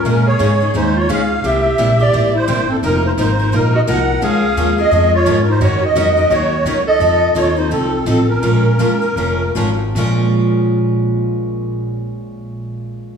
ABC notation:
X:1
M:4/4
L:1/16
Q:"Swing" 1/4=172
K:Bbm
V:1 name="Accordion"
B2 d6 c2 d2 f4 | =e6 =d4 c4 =A2 | B2 c2 c4 B2 e2 g4 | f6 e4 d3- d/2 B/2 c2 |
d2 e2 e4 d6 e2- | e4 d2 c2 =A4 A2 B2- | B12 z4 | z16 |
z16 |]
V:2 name="Clarinet"
D2 A6 E2 F2 A4 | =G6 G4 =E4 C2 | E2 E2 E4 E2 G2 B4 | A6 A4 F3- F/2 D/2 E2 |
G2 G2 G4 G6 =A2- | =A4 F2 E2 C4 C2 D2- | D12 z4 | z16 |
z16 |]
V:3 name="Steel-string acoustic guitar"
[D,A,DEA]2 z2 [D,A,DEA] z [DEA]2 [D,A,DEA]2 z2 [D,A,DEA] z3 | [C,=G,B,=E=G]2 z2 [C,G,B,EG] z [B,EG]2 [C,G,B,EG]2 z2 [C,G,B,EG] z3 | [F,B,EFB]2 z2 [F,B,EFB] z [EFB]2 [F,B,EFB]2 z2 [F,B,EFB] z3 | [F,A,DFB]2 z2 [F,A,DFB] z [DFB]2 [F,A,DFB]2 z2 [F,A,DFB] z3 |
[E,G,DEB]2 z2 [E,G,DEB] z [DEB]2 [E,G,DEB]2 z2 [E,G,DEB] z3 | [F,CE=A]2 z2 [F,CEA] z [CEA]2 [F,CEA]2 z2 [F,CEA] z3 | [F,A,DFB]2 z2 [F,A,DFB] z [DFB]2 [F,A,DFB]2 z2 [F,A,DFB] z3 | [B,,F,A,DFB]16- |
[B,,F,A,DFB]16 |]
V:4 name="Steel-string acoustic guitar"
[D,A,DEA]2 z2 [D,A,DEA] z3 [D,A,DEA]2 z2 [D,A,DEA] z3 | [C,=G,B,=E=G]2 z2 [C,G,B,EG] z3 [C,G,B,EG]2 z2 [C,G,B,EG] z3 | [F,B,EFB]2 z2 [F,B,EFB] z3 [F,B,EFB]2 z2 [F,B,EFB] z3 | [F,A,DFB]2 z2 [F,A,DFB] z3 [F,A,DFB]2 z2 [F,A,DFB] z3 |
[E,G,DEB]2 z2 [E,G,DEB] z3 [E,G,DEB]2 z2 [E,G,DEB] z3 | [F,CE=A]2 z2 [F,CEA] z3 [F,CEA]2 z2 [F,CEA] z3 | [F,A,DFB]2 z2 [F,A,DFB] z3 [F,A,DFB]2 z2 [F,A,DFB] z3 | [B,,F,A,DFB]16- |
[B,,F,A,DFB]16 |]
V:5 name="Upright bass" clef=bass
B,,4 A,,4 E,,4 D,,4 | C,,4 B,,,4 =A,,,4 =G,,,4 | F,,,4 A,,,4 B,,,4 C,,4 | D,,4 E,,4 F,,4 A,,4 |
G,,4 F,,4 E,,4 D,,4 | F,,4 E,,4 C,,4 =A,,,4 | B,,,4 G,,,4 F,,,4 A,,,4 | B,,,16- |
B,,,16 |]